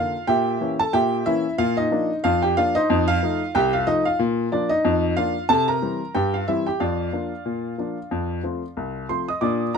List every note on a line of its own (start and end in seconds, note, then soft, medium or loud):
0.00 0.14 D3 medium
0.00 0.14 A#3 medium
0.00 0.26 F4 medium
0.00 0.26 F5 loud
0.27 0.56 A#2 medium
0.27 0.76 G4 medium
0.27 0.76 E5 medium
0.27 0.68 G5 loud
0.61 0.79 E3 medium
0.61 0.79 A#3 medium
0.61 0.79 C#4 medium
0.79 0.93 A4 medium
0.79 0.94 A5 loud
0.93 1.21 A#2 medium
0.93 1.24 G4 medium
0.93 1.24 E5 medium
0.93 1.24 G5 loud
1.26 1.44 E3 medium
1.26 1.44 A#3 medium
1.26 1.45 C#4 medium
1.26 1.57 E4 medium
1.26 1.52 E5 loud
1.58 1.86 A#2 loud
1.58 1.76 F4 medium
1.58 1.77 F5 loud
1.77 2.21 D#4 medium
1.77 2.14 D#5 loud
1.91 2.09 F3 medium
1.91 2.09 A#3 medium
1.91 2.10 D4 medium
2.24 2.52 F2 medium
2.24 2.41 F4 medium
2.24 2.42 F5 loud
2.42 2.56 G4 medium
2.42 2.56 G5 loud
2.57 2.75 F3 medium
2.57 2.75 A#3 medium
2.57 2.76 D4 medium
2.57 2.74 F4 medium
2.57 2.75 F5 loud
2.75 3.06 D#4 medium
2.75 3.06 C5 medium
2.75 3.06 D#5 loud
2.90 3.17 F2 loud
3.08 3.51 F4 loud
3.08 3.52 F5 loud
3.23 3.40 F3 medium
3.23 3.41 A3 medium
3.23 3.41 D#4 medium
3.55 3.82 C2 medium
3.55 3.72 G4 loud
3.55 3.73 G5 loud
3.73 3.87 F4 medium
3.73 3.87 F5 loud
3.87 4.05 F3 medium
3.87 4.05 A3 medium
3.87 4.04 D#4 medium
3.87 4.05 D#5 loud
4.05 4.19 F4 medium
4.05 4.19 F5 loud
4.19 4.47 A#2 loud
4.52 4.70 F3 medium
4.52 4.70 A#3 medium
4.52 4.69 D4 medium
4.52 4.70 D5 medium
4.69 5.14 D#4 medium
4.69 5.14 D#5 loud
4.85 5.12 F2 loud
5.17 5.35 F3 medium
5.17 5.35 A#3 medium
5.17 5.35 D4 medium
5.17 5.47 F4 medium
5.17 5.43 F5 loud
5.49 5.77 C3 medium
5.49 5.66 A4 loud
5.49 5.67 A5 loud
5.68 6.12 A#4 medium
5.68 6.12 A#5 loud
5.82 6.00 E3 medium
5.82 6.00 G3 soft
5.82 6.00 C4 medium
6.15 6.42 G2 medium
6.15 6.32 G4 medium
6.15 6.33 G5 loud
6.34 6.47 F4 medium
6.34 6.48 F5 medium
6.48 6.66 E3 soft
6.48 6.66 G3 medium
6.48 6.66 C4 medium
6.48 6.65 E4 medium
6.48 6.66 E5 medium
6.67 6.80 G4 medium
6.67 6.80 G5 medium
6.80 7.08 F2 medium
6.80 9.06 F4 medium
6.80 9.06 D5 medium
6.80 9.06 F5 medium
7.13 7.31 F3 soft
7.13 7.31 A#3 soft
7.13 7.31 D4 medium
7.46 7.73 A#2 medium
7.78 7.96 F3 soft
7.78 7.97 A#3 soft
7.78 7.97 D4 soft
8.11 8.39 F2 medium
8.43 8.62 F3 soft
8.43 8.62 A3 soft
8.43 8.62 C4 medium
8.77 9.05 C2 medium
9.09 9.28 F3 soft
9.09 9.28 A3 soft
9.09 9.28 C4 soft
9.09 9.27 C5 medium
9.09 9.28 C6 medium
9.28 9.42 D#5 medium
9.28 9.43 D#6 medium
9.41 9.70 A#2 loud
9.41 9.61 D4 medium
9.41 9.73 D5 medium
9.41 9.73 D6 medium
9.74 9.78 F3 medium
9.74 9.78 A#5 loud